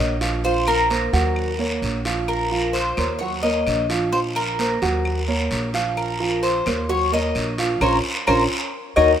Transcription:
Already playing: grand piano A#3 A#4 C#5, cuban tres D#5
0.00 upright bass A#1
0.21 grand piano F3 F4 F5, short guiro
0.44 grand piano F3 F4 F5, cuban tres C5, long guiro
0.67 cuban tres A#4, claves
0.90 grand piano A#3 A#4 C5, short guiro
1.13 upright bass D#2, grand piano F#3 F#4 F#5, short guiro
1.36 long guiro, claves
1.59 grand piano A#3 A#4 C#5
1.82 upright bass A#1, short guiro
2.05 grand piano F3 F4 F5, short guiro
2.28 cuban tres A#4, long guiro, claves
2.51 grand piano F3 F4 F5
2.73 cuban tres C5, short guiro
2.97 upright bass D#2, grand piano A#3 A#4 C#5, short guiro, claves
3.19 grand piano F#3 F#4 F#5, cuban tres C#5, long guiro
3.43 grand piano A#3 A#4 C#5, cuban tres D#5
3.67 upright bass A#1, short guiro, claves
3.90 grand piano F3 F4 F5, short guiro
4.12 grand piano F3 F4 F5, cuban tres C5, long guiro
4.36 cuban tres A#4, claves
4.59 grand piano A#3 A#4 C5, short guiro
4.82 upright bass D#2, grand piano F#3 F#4 F#5, short guiro
5.05 long guiro, claves
5.28 grand piano A#3 A#4 C#5
5.51 upright bass A#1, short guiro
5.74 grand piano F3 F4 F5, short guiro
5.97 cuban tres A#4, long guiro, claves
6.20 grand piano F3 F4 F5
6.43 cuban tres C5, short guiro
6.66 upright bass D#2, grand piano A#3 A#4 C#5, short guiro, claves
6.89 grand piano F#3 F#4 F#5, cuban tres C#5, long guiro
7.12 grand piano A#3 A#4 C#5, cuban tres D#5
7.35 upright bass A#1, short guiro, claves
7.58 grand piano F3 F4 F5, short guiro
7.81 upright bass A#1, grand piano C#4 F4 A#4, cuban tres A#4 C5 C#5, long guiro, claves
8.27 upright bass A#1, grand piano C#4 F4 A#4, cuban tres A#4 C5 C#5, long guiro, claves
8.96 upright bass D#2, grand piano D#4 F#4 A#4, cuban tres A#4 C#5 D#5, long guiro, claves

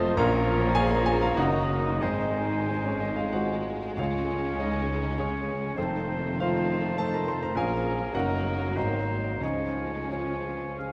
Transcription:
Already playing: grand piano F1 F2 A3 C4 F4 A4 C5 D#5 F5 A5 C6, tuba F1, double bass section F1, cello section F2, viola section F3, bassoon F3, violin section A3 D#4, clarinet F4, french horn section C5, oboe D#5, flute section A5
0.16 tuba A#1, double bass section A#1, grand piano A#1 A#2 A#4 F5 A#5, cello section A#2, viola section F3, bassoon F3, violin section A#3 C#4, clarinet F4, french horn section A#4, oboe C#5, flute section A#5
0.75 grand piano A#3 F4 G#4 C#5 G#5, french horn section G#4
0.91 french horn section A#4, grand piano A#4 A#5
1.05 french horn section G#4, grand piano G#4 G#5
1.21 french horn section F4, grand piano F4 F5
1.36 tuba F#1, double bass section F#1, grand piano F#1 F#2 A#3 D#4 F#4 A#4 D#5 F#5, cello section F#2, viola section D#3, bassoon F#3, clarinet D#4, violin section D#4, french horn section F#4, oboe D#5
2.01 double bass section G#1, grand piano G#1 G#2 D#4 C5 D#5, tuba G#1, cello section G#2, bassoon G#3, violin section G#3 C4, french horn section D#4, oboe C5, flute section G#5
2.69 grand piano G#3 D#4 C5
2.84 french horn section C#4, grand piano C#4 C#5
3.00 grand piano D#4 D#5, french horn section D#4
3.16 french horn section F4, grand piano F4 F5
3.33 grand piano G#3 D#4 F#4 C5 D#5 F#5, french horn section F#4
3.97 grand piano C#2 C#3 F4 C#5 F5, cello section C#2, tuba C#2, double bass section C#2, viola section C#3, bassoon G#3, violin section C#4, clarinet C#4, french horn section F4, oboe C#5, flute section G#5
4.58 grand piano G#3 C#4 D#4 C#5 D#5, french horn section D#4
5.18 bassoon G#3, grand piano G#3 C#4 G#4 C#5, clarinet C#4, french horn section C#4, oboe C#5, flute section G#5
5.76 tuba F1, double bass section F1, grand piano F1 F2 C4 A4 C5, cello section F2, viola section D#3, bassoon F3, violin section A3 C4, french horn section C4, clarinet D#4, oboe C5, flute section A5
6.40 bassoon F3, grand piano A3 D#4 F4 C5 F5, clarinet D#4, french horn section F4, oboe C5, flute section A5
6.97 bassoon F3, grand piano A3 D#4 A4 C5 A5, clarinet D#4, french horn section A4, oboe C5, flute section A5
7.13 french horn section A#4, grand piano A#4 A#5
7.28 french horn section C5, grand piano C5 C6
7.40 french horn section A#4, grand piano A#4 A#5
7.54 tuba A#1, double bass section A#1, grand piano A#1 A#2 A#3 C#4 G#4 A#4 F5 G#5, cello section A#2, bassoon F3, viola section F3, violin section A#3 C#4, clarinet C#4, french horn section G#4, oboe A#4, flute section A#5
8.13 double bass section F#1, tuba F#1, grand piano F#1 F#2 A#3 D#4 F#4 A#4 D#5 F#5, cello section F#2, bassoon F#3, viola section F#3, violin section D#4, clarinet D#4, french horn section F#4, oboe A#4, flute section A#5
8.76 double bass section G#1, tuba G#1, grand piano G#1 G#2 C4 D#4 F#4 A#4 C5 D#5, cello section G#2, bassoon F#3, violin section C4, clarinet D#4, french horn section D#4, oboe C5, flute section A#5
9.41 grand piano C#2 C#3 D#4 G#4 D#5, double bass section C#2, tuba C#2, cello section C#3, viola section F3, bassoon F3, violin section G#3 C#4, french horn section D#4, clarinet F4, oboe C#5, flute section G#5
10.10 bassoon F3, french horn section C#4, grand piano C#4 F4 G#4 C#5, clarinet F4, oboe C#5, flute section G#5
10.78 grand piano C#4 F4 G#4, oboe F5

